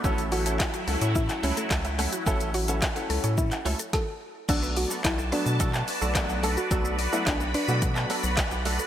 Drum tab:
CC |----------------|----------------|x---------------|----------------|
HH |-xox-xox-xox-xox|-xox-xox-xox----|x-o-x-o-x-o-x-o-|x-o-x-o-x-o-x-o-|
SH |xxxxxxxxxxxxxxxx|xxxxxxxxxxxx----|xxxxxxxxxxxxxxxx|xxxxxxxxxxxxxxxx|
CP |----x----x--x---|----x----x------|----x----x--x---|----x----x--x---|
SD |----o-------o---|----o-------o---|----o-------o---|----o-------o---|
BD |o---o---o---o---|o---o---o---o---|o---o---o---o---|o---o---o---o---|